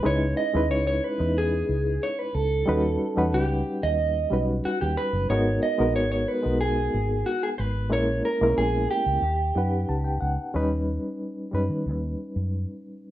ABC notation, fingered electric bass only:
X:1
M:4/4
L:1/16
Q:1/4=91
K:D#m
V:1 name="Fingered electric bass" clef=bass
C,,2 z D,, C,,2 z =E,,3 C,,2 z2 C,,2 | D,,2 z =E,, C,,2 z D,,3 B,,,2 z D,, z F,,, | G,,,2 z A,,, G,,,2 z B,,,3 G,,,2 z2 G,,,2 | A,,,2 z B,,, A,,,2 z C,, D,,2 F,,2 C,,2 C,, z |
D,,3 z3 F,, D, D,,2 z F,,2 z3 |]